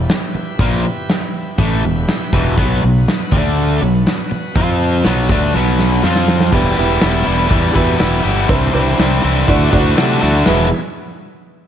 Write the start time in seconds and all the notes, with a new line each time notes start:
Already playing: E4 G4 B4
0.09 snare, open hi-hat
0.34 muted fingered electric bass stroke, muted overdriven electric guitar stroke, open hi-hat
0.59 A#1 A#2 F3 A#3, kick, open hi-hat
0.84 open hi-hat
1.09 snare, open hi-hat
1.34 open hi-hat
1.58 A1 A2 E3 A3, kick, open hi-hat
1.83 E1 E2 B2, open hi-hat
2.08 snare, open hi-hat
2.33 E1 E2 B2 E3, kick, open hi-hat
2.57 B1 B2 F#3 B3 F#4 B4, kick, open hi-hat
2.83 B1 B2 F#3, open hi-hat
3.08 snare, open hi-hat
3.32 D2 D3 A3 D4 A4, kick, open hi-hat
3.57 open hi-hat
3.81 B1 B2 F#3 B3 F#4 B4, open hi-hat
4.06 snare, open hi-hat
4.31 muted overdriven electric guitar stroke, muted fingered electric bass stroke, open hi-hat
4.55 F2 F3 C4 F4 C5, kick, open hi-hat
4.80 open hi-hat
5.04 B1 B2 F#3 B3 F#4 B4, snare, open hi-hat
5.29 D2 D3 A3 D4, kick, open hi-hat
5.54 B1 B2 F#3 B3, snare
5.79 snare
6.03 F2 F3 C4 F4 C5, snare
6.16 snare
6.28 snare
6.40 snare
6.52 E1 E3 G3 B3 E4 G4 B4, kick, crash
6.77 E1 E3 G3 B3 E4 G4, open hi-hat
7.01 E1 E3 G3 B3 E4, snare, open hi-hat
7.26 E1 E3 G3 B3 E4, open hi-hat
7.49 E2 E3 G3 B3 E4, kick, open hi-hat
7.74 E2 E3 G3 B3 E4 F#4, kick, open hi-hat
7.98 E1 E3 G3 B3 E4, snare, open hi-hat
8.23 G1 E3 G3 B3 E4, open hi-hat
8.48 C2 C3 E3 G3 C4 D4 E4 C5, kick, open hi-hat
8.73 C2 C3 E3 G3 C4 D4 E4 C5, open hi-hat
8.98 C2 C3 E3 G3 C4 E4, snare, open hi-hat
9.23 C2 C3 E3 G3 C4 E4, open hi-hat
9.47 D2 D3 A3 D4 E4 F#4 D5, kick, open hi-hat
9.72 D2 D3 A3 D4 E4 F#4 D5, kick, open hi-hat
9.96 C3 D3 A3 D4 F#4, snare, open hi-hat
10.21 D2 D3 A3 D4 F#4, open hi-hat
10.45 E1 E2 B2 E3 G#3 B3 E4 G#4 B4, snare, ride bell